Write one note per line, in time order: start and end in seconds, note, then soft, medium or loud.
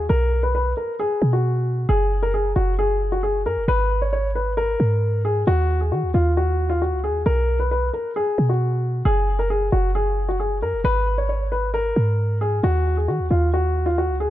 0.09 0.74 B1 loud
0.09 0.41 A#4 loud
0.43 0.52 B4 medium
0.55 0.71 B4 medium
0.77 0.94 A#4 medium
0.99 1.31 G#4 medium
1.22 1.86 B2 loud
1.33 1.86 F#4 medium
1.89 2.53 F#1 loud
1.89 2.20 G#4 loud
2.23 2.31 A#4 medium
2.34 2.51 G#4 medium
2.56 3.47 F#1 loud
2.56 2.73 F#4 medium
2.79 3.10 G#4 medium
3.12 3.20 F#4 medium
3.23 3.40 G#4 medium
3.46 3.58 F#2 loud
3.46 3.63 A#4 medium
3.57 3.67 F#1 loud
3.68 4.76 G#1 loud
3.68 4.00 B4 loud
4.02 4.10 C#5 medium
4.13 4.30 C#5 medium
4.35 4.52 B4 medium
4.57 5.21 A#4 medium
4.80 5.44 G#2 loud
5.25 5.42 G#4 medium
5.47 5.93 D#2 loud
5.47 5.79 F#4 loud
5.81 5.89 G#4 medium
5.92 6.05 D#3 loud
5.92 6.09 F#4 medium
6.03 6.14 D#2 medium
6.14 6.94 D#2 loud
6.14 6.31 F4 medium
6.37 6.68 F#4 medium
6.70 6.78 F4 medium
6.82 6.98 F#4 medium
6.93 7.11 C#2 loud
7.04 7.21 G#4 medium
7.09 7.25 D#2 loud
7.26 7.91 B1 loud
7.26 7.58 A#4 loud
7.60 7.68 B4 medium
7.71 7.88 B4 medium
7.93 8.10 A#4 medium
8.16 8.47 G#4 medium
8.38 9.03 B2 loud
8.49 9.02 F#4 medium
9.05 9.70 F#1 loud
9.05 9.37 G#4 loud
9.39 9.47 A#4 medium
9.50 9.67 G#4 medium
9.72 10.63 F#1 loud
9.72 9.89 F#4 medium
9.95 10.27 G#4 medium
10.29 10.37 F#4 medium
10.40 10.56 G#4 medium
10.62 10.75 F#2 loud
10.62 10.79 A#4 medium
10.73 10.84 F#1 loud
10.84 11.92 G#1 loud
10.84 11.16 B4 loud
11.18 11.26 C#5 medium
11.29 11.46 C#5 medium
11.52 11.69 B4 medium
11.74 12.37 A#4 medium
11.96 12.61 G#2 loud
12.41 12.58 G#4 medium
12.63 13.10 D#2 loud
12.63 12.95 F#4 loud
12.97 13.06 G#4 medium
13.08 13.21 D#3 loud
13.08 13.25 F#4 medium
13.19 13.30 D#2 loud
13.31 14.11 D#2 loud
13.31 13.48 F4 medium
13.54 13.85 F#4 medium
13.86 13.95 F4 medium
13.98 14.15 F#4 medium
14.09 14.27 C#2 loud
14.20 14.30 G#4 medium
14.26 14.30 D#2 loud